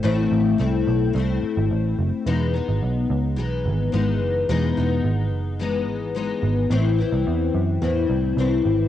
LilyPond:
<<
  \new Staff \with { instrumentName = "Steel-string acoustic guitar" } { \time 4/4 \key e \major \tempo 4 = 108 <a, a c' e'>4 <a, a c' e'>4 <a, a c' e'>2 | <e gis b dis'>8 <gis b dis'>4. <e gis b dis'>4 <e gis b dis'>4 | <e gis b dis'>8 <gis b dis'>4. <e gis b dis'>4 <e gis b dis'>4 | <a, e c' e'>8 <e c' e'>4. <a, e c' e'>4 <a, e c' e'>4 | }
  \new Staff \with { instrumentName = "Picked electric bass" } { \clef bass \time 4/4 \key e \major a,,8 a,,8 c,8 b,,8 c,8 r16 gis,,16 a,,8 fis,,16 r16 | e,,8. gis,,16 b,,8 cis,8 b,,8 gis,,8 gis,,8 fis,,8 | e,,8 e,,8 gis,,8 fis,,4 gis,,4 gis,,8 | a,,8. c,16 e,8 fis,8 e,8 c,8 c,8 gis,,8 | }
>>